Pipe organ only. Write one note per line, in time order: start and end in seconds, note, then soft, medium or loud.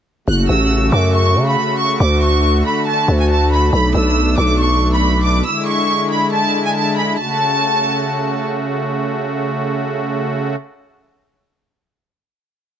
0.27 1.98 C#3 medium
0.27 5.41 A3 medium
0.27 1.98 F#4 medium
2.00 3.71 D3 medium
2.00 3.71 F#4 medium
3.73 5.44 B2 medium
3.73 5.44 D4 medium
5.46 7.16 D3 medium
5.46 7.16 G#3 medium
5.46 7.16 E4 medium
7.18 10.55 C#3 medium
7.18 10.55 A3 medium
7.18 10.55 F#4 medium